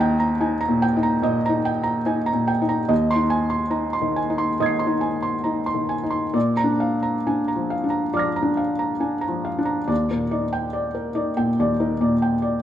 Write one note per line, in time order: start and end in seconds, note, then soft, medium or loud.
0.00 1.21 D#2 medium
0.00 0.31 D#4 medium
0.00 1.23 D#5 medium
0.00 0.33 G5 medium
0.00 0.13 A#5 medium
0.20 0.53 A#5 medium
0.40 0.85 D#4 medium
0.40 0.62 G#5 soft
0.61 0.95 A#5 medium
0.69 1.13 A#2 medium
0.82 1.16 G5 medium
0.97 1.41 D#4 medium
1.03 1.37 A#5 medium
1.22 1.68 A#2 medium
1.22 1.57 D#5 medium
1.46 1.95 D#4 medium
1.46 1.79 A#5 medium
1.65 1.99 G5 medium
1.83 2.18 A#5 medium
2.06 2.51 D#4 medium
2.06 2.28 G#5 soft
2.26 2.60 A#5 medium
2.33 2.78 A#2 soft
2.48 2.81 G5 medium
2.62 2.90 D#4 medium
2.69 2.90 A#5 medium
2.89 4.54 D#2 medium
2.89 3.23 D#5 medium
3.11 3.44 C6 medium
3.15 3.62 D#4 medium
3.30 3.65 G#5 medium
3.50 3.85 C6 medium
3.70 4.17 D#4 medium
3.70 3.94 A#5 soft
3.93 4.28 C6 medium
4.01 4.47 D#3 soft
4.16 4.51 G#5 medium
4.30 4.76 D#4 medium
4.38 4.72 C6 medium
4.60 5.06 D#3 medium
4.60 4.94 D#5 medium
4.60 6.32 D#6 soft
4.60 6.33 G#6 soft
4.66 6.35 C7 soft
4.79 5.15 C6 medium
4.87 5.34 D#4 soft
5.01 5.36 G#5 medium
5.23 5.58 C6 soft
5.44 5.93 D#4 soft
5.44 5.67 A#5 soft
5.66 6.03 C6 medium
5.74 6.23 D#3 soft
5.89 6.26 G#5 soft
6.03 6.34 D#4 soft
6.10 6.34 C6 soft
6.34 8.09 A#2 medium
6.34 6.71 D5 soft
6.57 6.93 A#5 medium
6.64 7.12 D4 soft
6.80 7.16 F5 soft
7.03 7.38 A#5 soft
7.27 7.73 D4 soft
7.27 7.48 G#5 soft
7.48 7.83 A#5 soft
7.56 8.02 F3 soft
7.70 8.05 F5 soft
7.84 8.31 D4 soft
7.90 8.26 A#5 soft
8.14 8.61 F3 soft
8.14 8.49 D5 medium
8.14 9.86 D6 soft
8.14 9.87 F6 soft
8.19 9.89 A#6 soft
8.36 8.71 A#5 soft
8.42 8.90 D4 soft
8.57 8.93 F5 soft
8.79 9.15 A#5 soft
9.00 9.49 D4 soft
9.00 9.23 G#5 soft
9.21 9.58 A#5 soft
9.28 9.77 F3 soft
9.45 9.81 F5 soft
9.58 9.89 D4 soft
9.65 9.88 A#5 soft
9.88 11.54 D#2 soft
9.88 10.23 D5 soft
10.10 10.45 A#2 soft
10.10 10.45 A#4 soft
10.31 10.66 D#4 soft
10.31 10.66 D5 soft
10.53 10.87 G5 medium
10.73 11.08 D5 soft
10.95 11.29 A#4 soft
11.15 11.50 D#4 soft
11.15 11.50 D5 soft
11.37 11.71 A#2 soft
11.37 11.71 G5 soft
11.59 12.62 D#2 soft
11.59 11.93 D5 soft
11.80 12.13 D#4 soft
11.80 12.13 A#4 soft
12.01 12.34 A#2 soft
12.01 12.34 D5 soft
12.22 12.55 G5 soft
12.42 12.62 D5 soft